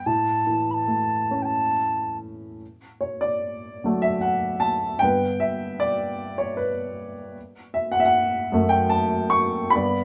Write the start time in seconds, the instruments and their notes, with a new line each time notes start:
0.06 upright piano A2, flute A5
0.47 upright piano E3
0.71 flute A5 B5
0.87 upright piano A3
1.31 upright piano C#4
1.42 flute G5 A5
3.01 upright piano C#5
3.21 upright piano D5
3.84 upright piano D3 F#3 A3
4.02 upright piano E5
4.21 upright piano F#5
4.60 upright piano A5
4.99 upright piano G2 D3 G5
5.04 upright piano B3 B4
5.40 upright piano E5
5.80 upright piano D5
6.38 upright piano C#5
6.57 upright piano B4
7.74 upright piano E5
7.92 upright piano F#5
8.00 upright piano E5
8.05 upright piano F#5
8.52 upright piano F#2 F#3 A3
8.69 upright piano G5
8.89 upright piano A5
9.30 upright piano C#6
9.70 upright piano B5
9.75 upright piano G2 D3 B3 D5